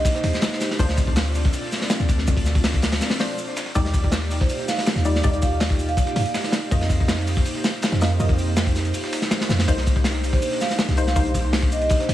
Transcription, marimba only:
0.15 C5
4.40 C5
4.50 C5
4.68 F5
5.42 F5
5.89 F5
5.97 F5
6.16 F5
10.33 C5
10.42 C5
10.61 F5
11.07 F5
11.72 D#5
11.81 D#5
12.00 C5

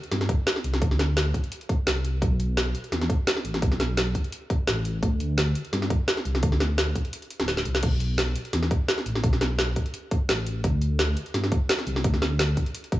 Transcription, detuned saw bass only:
0.11 G2
0.64 C2
0.82 D2
1.87 C2
2.22 B1
2.92 E2
3.45 A1
3.62 B1
4.68 A1
5.03 D2
5.73 G2
6.25 C2
6.43 D2
7.40 D1
7.66 C2
7.83 B1
8.53 E2
9.06 A1
9.24 B1
10.29 A1
10.64 D2
11.34 G2
11.87 C2
12.04 D2
12.92 A1

